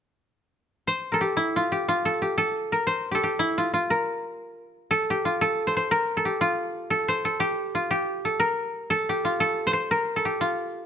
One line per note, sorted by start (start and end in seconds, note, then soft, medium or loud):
0.87 2.59 C5 medium
1.12 2.05 A4 medium
1.12 1.20 A#4 soft
1.21 1.71 G4 medium
1.37 1.62 E4 medium
1.56 1.88 F4 medium
1.72 2.21 G4 medium
1.89 3.45 F4 medium
2.05 2.37 A4 medium
2.22 3.11 G4 medium
2.38 2.78 A4 medium
2.72 3.21 A#4 medium
2.87 4.58 C5 medium
3.11 3.23 G4 medium
3.11 3.96 A4 medium
3.23 5.10 G4 medium
3.39 3.64 E4 medium
3.58 3.73 F4 medium
3.74 5.25 F4 medium
3.90 4.97 A#4 medium
4.91 5.41 A4 medium
5.10 6.25 G4 medium
5.25 6.41 F4 medium
5.41 5.97 A4 loud
5.67 5.76 C5 medium
5.77 7.08 C5 medium
5.91 6.23 A#4 medium
6.17 6.90 A4 medium
6.25 7.40 G4 medium
6.41 7.74 F4 medium
6.90 7.25 A4 medium
7.08 8.80 C5 medium
7.25 8.25 A4 medium
7.40 7.90 G4 medium
7.75 9.24 F4 medium
7.91 9.09 G4 medium
8.25 8.46 A4 medium
8.40 8.96 A#4 loud
8.90 9.40 A4 medium
9.09 10.25 G4 medium
9.25 10.40 F4 medium
9.40 9.97 A4 medium
9.67 9.73 C5 medium
9.73 10.86 C5 medium
9.91 10.22 A#4 medium
10.16 10.86 A4 medium
10.25 10.86 G4 medium
10.41 10.86 F4 medium